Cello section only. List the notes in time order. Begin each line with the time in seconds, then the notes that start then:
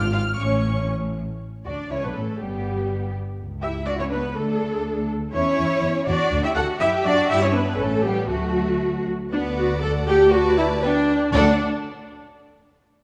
Already playing: G#2
0.39 A2
1.67 D4
1.92 C#4
2.04 B3
2.17 A3
2.42 G3
3.63 E4
3.87 D4
4.00 C#4
4.13 B3
4.37 A3
5.33 C#4
6.07 D4
6.44 E4
6.56 F#4
6.81 E4
7.05 D4
7.30 E4
7.43 C#4
7.55 B3
7.80 A3
8.06 G3
8.31 F#3
9.33 B3
9.83 A3
10.83 B3
11.34 D2